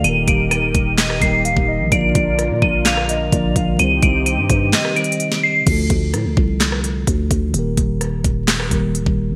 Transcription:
0.00 D#3 G3
0.04 D#1 D#3 A#3 D#4 G4 A#4 D#7, closed hi-hat
0.09 A#4
0.28 D#1 D7, kick, closed hi-hat
0.51 D#7, cross-stick, closed hi-hat
0.75 D#1, kick, closed hi-hat
0.98 D#5, snare, clap, closed hi-hat
1.10 cross-stick
1.19 D#1 D#3 G3 A#3 G4 C7, kick, closed hi-hat
1.24 A#4
1.45 D1 F5, closed hi-hat
1.57 D#1, kick
1.68 D#5
1.80 A#1
1.87 D3 F3
1.92 A#1 A#3 D4 F4 A#4 D5 D7, kick, closed hi-hat
1.97 A#4
2.15 A#1, kick, closed hi-hat
2.39 cross-stick, closed hi-hat
2.50 A#2
2.62 A#1 D#7, kick
2.85 F5 F7, snare, clap, closed hi-hat
2.97 cross-stick
3.09 D#5, closed hi-hat
3.30 A#1 D3 F3 A#3 F4 D5, kick, closed hi-hat
3.35 A#4
3.56 A#1 F5, kick, closed hi-hat
3.74 D#3 G3
3.79 C2 C3 C4 D#4 G4 D#7, closed hi-hat
3.84 C5
4.03 C2 D7, kick, closed hi-hat
4.26 D#7, closed hi-hat
4.38 G2
4.50 G2, kick, closed hi-hat
4.73 D#5, snare, clap, closed hi-hat
4.85 cross-stick
4.94 D#3 G3 C4 G4 D7, closed hi-hat
4.99 C5
5.04 closed hi-hat
5.12 closed hi-hat
5.20 closed hi-hat
5.32 snare
5.43 C7
5.62 D3 F3
5.67 D2 A3 F4, kick, closed hi-hat, crash
5.72 A4
5.90 D2, kick, closed hi-hat
6.14 A2, cross-stick, closed hi-hat
6.25 D2
6.37 C2, kick
6.60 snare, clap, closed hi-hat
6.72 cross-stick
6.84 closed hi-hat
7.07 D2, kick, closed hi-hat
7.31 D2, kick, closed hi-hat
7.49 D#3 G3
7.54 D#1 A#3 G4, closed hi-hat
7.59 A#4
7.77 D#1, kick, closed hi-hat
8.01 cross-stick, closed hi-hat
8.24 D#1, kick, closed hi-hat
8.48 snare, clap, closed hi-hat
8.60 cross-stick
8.69 D#1 D#3 G3 A#3 G4, kick, closed hi-hat
8.74 A#4
8.95 D1, closed hi-hat
9.06 D#1, kick
9.30 A#1

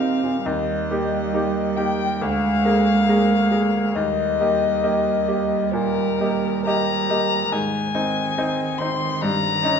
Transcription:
Already playing: A#2 A#3 C4 G4 A#4 F5
0.00 D#4
0.23 A#2
0.45 D#2 G3 D#5
0.91 A#3 D#4 G4
1.34 A#3 D#4 G4
1.77 A#3 D#4 G4 G5
2.20 D2 G#3 F5
2.65 A#3 G#4 A#4
3.09 A#3 G#4 A#4
3.51 A#3 G#4 A#4
3.95 D#2 G3 D#5
4.41 A#3 G4 D#5
4.84 A#3 G4 D#5
5.28 A#3 G4 D#5
5.72 A#2 A#4
6.20 A#3 G4 D#5
6.66 A#3 G4 D#5 A#5
7.09 A#3 G4 D#5
7.52 G#2 D#3 G#5
7.95 C4 D#4 D#5
8.38 C4 D#4 D#5
8.78 C4 D#4 D#5 C6
9.21 G2 A#5
9.63 C#4 D#4 D#5

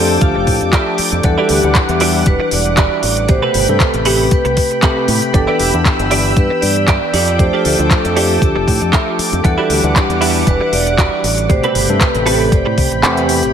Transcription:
Already playing: F2 F3 A3 D4 F4 G4 A4 D5 G5 A5 D6
0.21 D2 G4 F5, kick, closed hi-hat
0.35 F1, muted clean electric guitar stroke
0.47 A2, muted clean electric guitar stroke, kick, open hi-hat
0.61 F2, muted clean electric guitar stroke, closed hi-hat
0.72 F4 G4 A4 D5 E5, kick, clap, closed hi-hat
0.98 D5, muted fingered electric bass stroke, open hi-hat
1.12 F2, closed hi-hat
1.23 E2 E3 G3 D4 A4 F#5, muted clean electric guitar stroke, kick, closed hi-hat
1.38 E4 F#4 G4 D5
1.49 D2 G4, open hi-hat
1.63 D2 E3 G3 D4 F#5, closed hi-hat
1.75 kick, clap, closed hi-hat
1.89 E2, muted clean electric guitar stroke, closed hi-hat
2.00 E3 G3 D4 E4 F#4 G4 D5 F#5, open hi-hat
2.26 E1 B4, kick, closed hi-hat
2.40 muted clean electric guitar stroke
2.51 E1 D5, muted clean electric guitar stroke, open hi-hat
2.66 muted clean electric guitar stroke, closed hi-hat
2.77 E4 F#4 G4 D5, kick, clap, closed hi-hat
3.03 A1, open hi-hat
3.17 closed hi-hat
3.29 B2 C3 A3 G4 C5 G5 B5, muted clean electric guitar stroke, kick, closed hi-hat
3.42 C4 G4 A4 B4
3.54 G1, open hi-hat
3.68 G2 C3 A3 A4 B4, closed hi-hat
3.80 A4, kick, clap, closed hi-hat
3.94 A1, muted clean electric guitar stroke, closed hi-hat
4.05 C3 A3 C4 G4 A4 B4, open hi-hat
4.31 B4, kick, closed hi-hat
4.45 C2, muted clean electric guitar stroke, closed hi-hat
4.57 muted clean electric guitar stroke, kick, open hi-hat
4.71 muted clean electric guitar stroke, closed hi-hat
4.82 C3 A3 C4 G4 A4 B4, kick, clap, closed hi-hat
5.08 A2, open hi-hat
5.22 closed hi-hat
5.34 G1 E3 B3 D4 G4 A4 E6, muted clean electric guitar stroke, kick, closed hi-hat
5.47 E4 G4 B4 D5
5.59 E1 G4, open hi-hat
5.73 E2 E3 B3 D4 G4, closed hi-hat
5.85 kick, clap, closed hi-hat
5.99 G1, muted clean electric guitar stroke, closed hi-hat
6.11 E3 B3 D4 E4 G4 B4 D5, open hi-hat
6.36 G2 B4, kick, closed hi-hat
6.50 muted clean electric guitar stroke
6.61 G2 D5, muted clean electric guitar stroke, open hi-hat
6.76 muted clean electric guitar stroke, closed hi-hat
6.88 E4 G4 B4 D5, kick, clap, closed hi-hat
7.13 F2 F4 G4 A4 D5 D6, open hi-hat
7.28 closed hi-hat
7.38 F3 A3 D4 G4 C5, kick, closed hi-hat
7.53 F4 G4 A4 D5
7.65 D2, open hi-hat
7.78 D2 F3 A3 D4 A4, closed hi-hat
7.90 A4, kick, clap, closed hi-hat
8.04 F2, muted clean electric guitar stroke, closed hi-hat
8.15 F3 A3 D4 F4 G4 A4 D5, open hi-hat
8.42 D2 G4, kick, closed hi-hat
8.56 F1, muted clean electric guitar stroke
8.67 A2, muted clean electric guitar stroke, kick, open hi-hat
8.81 F2, muted clean electric guitar stroke, closed hi-hat
8.92 F4 G4 A4 E5, kick, clap, closed hi-hat
9.19 muted fingered electric bass stroke, open hi-hat
9.33 F2, closed hi-hat
9.44 E2 E3 G3 D4 A4 F#5, muted clean electric guitar stroke, kick, closed hi-hat
9.58 E4 F#4 G4 D5
9.70 D2 G4, open hi-hat
9.83 D2 E3 G3 D4 F#5, closed hi-hat
9.96 kick, clap, closed hi-hat
10.09 E2, muted clean electric guitar stroke, closed hi-hat
10.20 E3 G3 D4 E4 F#4 G4 D5 F#5, open hi-hat
10.47 E1 B4, kick, closed hi-hat
10.61 muted clean electric guitar stroke
10.67 E5
10.72 E1 D5, muted clean electric guitar stroke, open hi-hat
10.86 muted clean electric guitar stroke, closed hi-hat
10.98 E4 F#4 G4 D5, kick, clap, closed hi-hat
11.24 A1, open hi-hat
11.38 closed hi-hat
11.49 B2 C3 A3 G4 C5 G5 B5, muted clean electric guitar stroke, kick, closed hi-hat
11.63 C4 G4 A4 B4, closed hi-hat
11.75 G1, open hi-hat
11.89 G2 C3 A3 A4 B4, closed hi-hat
12.01 B4, kick, clap, closed hi-hat
12.15 A1, muted clean electric guitar stroke, closed hi-hat
12.26 C3 A3 C4 G4 A4 B4 C5, open hi-hat
12.46 D5
12.52 G1 C5, kick, closed hi-hat
12.66 A2, muted clean electric guitar stroke
12.77 C2, muted clean electric guitar stroke, kick, open hi-hat
12.91 A1, muted clean electric guitar stroke, closed hi-hat
13.03 E2 C3 A3 C4 G4 A4 B4, clap, closed hi-hat
13.17 closed hi-hat
13.29 open hi-hat
13.43 A1, closed hi-hat

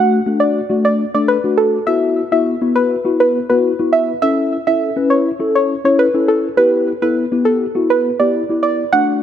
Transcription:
Already playing: A3 D4 F#4
0.26 A3 D4 F#4
0.40 D5
0.69 A3 D4 F#4
0.85 D5
1.14 A3 D4 A4 D5
1.28 B4
1.44 A3 D4 F#4
1.57 A4
1.87 B3 E4 F#4 E5
2.32 B3 E4 F#4 E5
2.61 B3 E4 F#4
2.76 B4
3.05 B3 E4 F#4
3.20 B4
3.49 B3 E4 F#4 B4
3.79 B3 E4 F#4
3.93 E5
4.22 C#4 E4 A4 E5
4.67 C#4 E4 A4 E5
4.96 C#4 E4 B4
5.10 C#5
5.40 C#4 E4 A4
5.55 C#5
5.84 C#4 E4 A4 C#5
5.99 B4
6.14 C#4 E4 A4
6.28 A4
6.57 B3 E4 G4 B4
7.02 B3 E4 A4 B4
7.31 B3 E4 G4
7.45 A4
7.75 B3 E4 F#4
7.90 B4
8.20 B3 E4 G4 D5
8.49 B3 E4 G4
8.63 D5
8.93 A3 D4 F#4 F#5

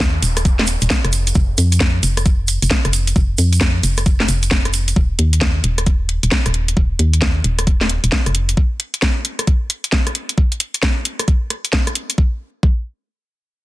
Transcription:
Already playing: D#2, downlifter
0.00 kick, snare, shaker
0.22 D#1, closed hi-hat, shaker
0.37 cross-stick, closed hi-hat, shaker
0.45 kick, closed hi-hat, shaker
0.59 snare
0.67 closed hi-hat, shaker
0.81 D#1, closed hi-hat, shaker
0.90 kick, snare, shaker
1.04 F1, cross-stick, closed hi-hat
1.13 closed hi-hat, shaker
1.27 closed hi-hat, shaker
1.34 F1, kick, shaker
1.58 F2, closed hi-hat, shaker
1.72 closed hi-hat, shaker
1.80 kick, snare
2.03 F1, closed hi-hat, shaker
2.17 cross-stick, closed hi-hat, shaker
2.26 kick, closed hi-hat, shaker
2.48 closed hi-hat, shaker
2.62 F1, closed hi-hat, shaker
2.71 kick, snare
2.85 F1, cross-stick, closed hi-hat
2.93 closed hi-hat, shaker
3.07 closed hi-hat, shaker
3.16 F1, kick, shaker
3.38 F2, closed hi-hat, shaker
3.53 closed hi-hat, shaker
3.61 kick, snare
3.83 F1, closed hi-hat, shaker
3.97 cross-stick, closed hi-hat, shaker
4.06 kick, closed hi-hat, shaker
4.20 snare
4.28 F1, closed hi-hat, shaker
4.43 closed hi-hat, shaker
4.51 kick, snare, shaker
4.65 cross-stick, closed hi-hat
4.74 closed hi-hat, shaker
4.88 closed hi-hat, shaker
4.96 D#1, kick
5.19 D#2, closed hi-hat
5.33 closed hi-hat
5.41 kick, snare
5.64 D#1, closed hi-hat
5.78 cross-stick, closed hi-hat
5.86 kick, closed hi-hat
6.09 closed hi-hat
6.23 D#1, closed hi-hat
6.32 kick, snare
6.46 D#1, cross-stick, closed hi-hat
6.54 closed hi-hat
6.68 closed hi-hat
6.77 D#1, kick
6.99 D#2, closed hi-hat
7.13 closed hi-hat
7.22 kick, snare
7.44 D#1, closed hi-hat
7.59 cross-stick, closed hi-hat
7.67 kick, closed hi-hat
7.81 snare
7.89 closed hi-hat
8.04 D#1, closed hi-hat
8.12 kick, snare
8.26 F1, cross-stick, closed hi-hat
8.35 closed hi-hat
8.49 closed hi-hat
8.57 kick
8.80 closed hi-hat
8.94 closed hi-hat
9.02 kick, snare
9.25 closed hi-hat
9.39 cross-stick, closed hi-hat
9.47 kick, closed hi-hat
9.70 closed hi-hat
9.84 closed hi-hat
9.92 kick, snare
10.07 cross-stick, closed hi-hat
10.15 closed hi-hat
10.29 closed hi-hat
10.38 kick
10.52 closed hi-hat
10.60 closed hi-hat
10.74 closed hi-hat
10.83 kick, snare
11.05 closed hi-hat
11.19 cross-stick, closed hi-hat
11.28 kick, closed hi-hat
11.50 cross-stick, closed hi-hat
11.65 closed hi-hat
11.73 kick, snare
11.87 cross-stick, closed hi-hat
11.95 closed hi-hat
12.10 closed hi-hat
12.18 kick
12.63 kick

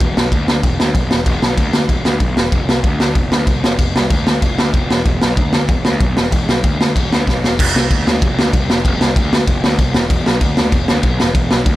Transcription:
0.01 E1, kick, crash
0.17 B1, snare
0.32 D2, kick, crash
0.48 D2, snare
0.63 E1, kick, crash
0.80 D2, snare
0.95 B1, kick, crash
1.11 E1, snare
1.26 E1, kick, crash
1.42 B1, snare
1.58 D2, kick, crash
1.73 D2, snare
1.89 E1, kick, crash
2.05 D2, snare
2.20 B1, kick, crash
2.37 E1, snare
2.52 F1, kick, crash
2.68 C2, snare
2.84 D2, kick, crash
3.00 D2, snare
3.15 F1, kick, crash
3.32 D2, snare
3.47 C2, kick, crash
3.64 F1, snare
3.79 F1, kick, crash
3.95 C2, snare
4.10 D2, kick, crash
4.27 D2, snare
4.42 F1, kick, crash
4.58 D2, snare
4.74 F1, kick, crash
4.91 E1, snare
5.05 E1, kick, crash
5.22 B1, snare
5.37 D2, kick, crash
5.53 D2, snare
5.68 E1, kick, crash
5.85 D2, snare
6.00 B1, kick, crash
6.17 E1, snare
6.32 E1, kick, crash
6.49 B1, snare
6.64 D2, kick, crash
6.80 D2, snare
6.96 E1, kick, crash
7.11 D2, snare
7.27 B1, kick, snare
7.43 E1, snare
7.59 F1, kick, crash
7.75 C2, snare
7.91 D2, kick, crash
8.07 D2, snare
8.22 F1, kick, crash
8.38 D2, snare
8.53 C2, kick, crash
8.69 F1, snare
8.85 F1, kick, crash
9.01 C2, snare
9.16 D2, kick, crash
9.33 D2, snare
9.47 F1, kick, crash
9.64 D2, snare
9.79 C2, kick, crash
9.94 E1, snare
10.10 E1, kick, crash
10.26 B1, snare
10.41 D2, kick, crash
10.57 D2, snare
10.72 E1, kick, crash
10.88 D2, snare
11.03 B1, kick, crash
11.20 E1, snare
11.35 E1, kick, crash
11.51 B1, snare
11.66 D2, kick, crash

